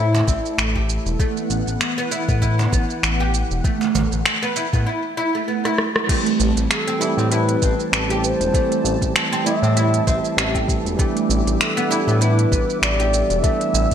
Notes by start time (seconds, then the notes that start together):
Already playing: A2 A3 E4 A4 E5
0.15 cajon slap, shaker
0.27 A1 C4, kick, shaker
0.46 shaker
0.58 A1, finger snap, cajon slap, shaker
0.75 G4, kick
0.89 shaker
1.06 E1, shaker
1.19 E3 A3 B3 F#5, kick, shaker
1.37 shaker
1.50 A1, shaker
1.67 A1, shaker
1.81 finger snap, shaker
1.98 B3, shaker
2.11 E4, shaker
2.28 A2 B3, kick, shaker
2.42 E4, kick, shaker
2.59 cajon slap, shaker
2.72 A1 B3, kick, shaker
2.90 shaker
3.03 A1, finger snap, shaker
3.20 G4
3.34 shaker
3.51 E1, shaker
3.64 A3, kick, shaker
3.81 cajon slap, shaker
3.95 A1, cajon bass, shaker
4.12 A1, shaker
4.26 finger snap, shaker
4.43 B3, shaker
4.56 E4, shaker
4.73 A2 B3, kick, shaker
4.86 E4
5.17 E4
5.35 A3
5.48 B3
5.65 E4, cross-stick
5.78 cross-stick
5.96 cross-stick
6.07 E3 G3 A3 C4 G4 A5, kick, closed hi-hat, crash, shaker
6.26 closed hi-hat, shaker
6.40 A1, shaker
6.56 A1, closed hi-hat, shaker
6.70 A4, finger snap, closed hi-hat, shaker
6.87 C4, closed hi-hat, shaker
6.99 E3 G3 A3 C4 E4, shaker
7.03 G4
7.17 A2 C4, shaker
7.31 E4 B4, closed hi-hat, shaker
7.49 closed hi-hat, shaker
7.62 A1 C4, kick, shaker
7.80 shaker
7.92 A1, finger snap, closed hi-hat, shaker
8.09 E3 G3 A3 C4 G4 A4, closed hi-hat, shaker
8.23 C5, shaker
8.40 E1, closed hi-hat, shaker
8.52 E3 G3 A3 C4 G4, kick, closed hi-hat, shaker
8.72 closed hi-hat, shaker
8.84 A1, shaker
9.02 A1, kick, closed hi-hat, shaker
9.16 finger snap, closed hi-hat, shaker
9.32 C4, closed hi-hat, shaker
9.44 E3 G3 A3 C4 E4 G4 E5, shaker
9.62 A2 C4, shaker
9.77 E4, closed hi-hat, shaker
9.94 closed hi-hat, shaker
10.07 A1 C4, kick, shaker
10.25 shaker
10.37 A1, finger snap, closed hi-hat, shaker
10.54 E3 G3 A3 C4 G4 A4, kick, closed hi-hat, shaker
10.68 kick, shaker
10.85 E1, closed hi-hat, shaker
10.97 E3 G3 A3 B3 D4 E5 D6, kick, closed hi-hat, shaker
11.01 G4
11.17 closed hi-hat, shaker
11.29 A1, shaker
11.46 A1, closed hi-hat, shaker
11.60 A4, finger snap, closed hi-hat, shaker
11.77 B3, closed hi-hat, shaker
11.88 E3 G3 B3 D4 E4, shaker
11.92 G4
12.07 A2 B3, shaker
12.21 E4 B4 C5, closed hi-hat, shaker
12.39 closed hi-hat, shaker
12.52 A1 B3, kick, shaker
12.70 shaker
12.82 A1 D5, finger snap, closed hi-hat, shaker
12.98 E3 G3 B3 D4 G4 A4, closed hi-hat, shaker
13.13 shaker
13.30 E1, closed hi-hat, shaker
13.42 E3 G3 A3 B3 D4 G4 E5 E6, kick, closed hi-hat, shaker
13.61 closed hi-hat, shaker
13.74 A1, shaker
13.91 closed hi-hat